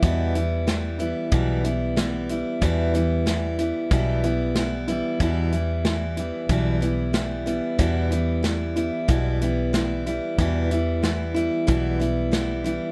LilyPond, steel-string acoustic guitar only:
\new Staff \with { instrumentName = "Steel-string acoustic guitar" } { \clef bass \time 4/4 \key e \minor \tempo 4 = 93 <e, b, e g b e'>8 <e g b e'>8 <e g b e'>8 <e g b e'>8 <e, b, e g b e'>8 <e g b e'>8 <e g b e'>8 <e g b e'>8 | <e, b, e g b e'>8 <e g b e'>8 <e g b e'>8 <e g b e'>8 <e, b, e g b e'>8 <e g b e'>8 <e g b e'>8 <e g b e'>8 | <e, b, e g b e'>8 <e g b e'>8 <e g b e'>8 <e g b e'>8 <e, b, e g b e'>8 <e g b e'>8 <e g b e'>8 <e g b e'>8 | <e, b, e g b e'>8 <e g b e'>8 <e g b e'>8 <e g b e'>8 <e, b, e g b e'>8 <e g b e'>8 <e g b e'>8 <e g b e'>8 |
<e, b, e g b e'>8 <e g b e'>8 <e g b e'>8 <e g b e'>8 <e, b, e g b e'>8 <e g b e'>8 <e g b e'>8 <e g b e'>8 | }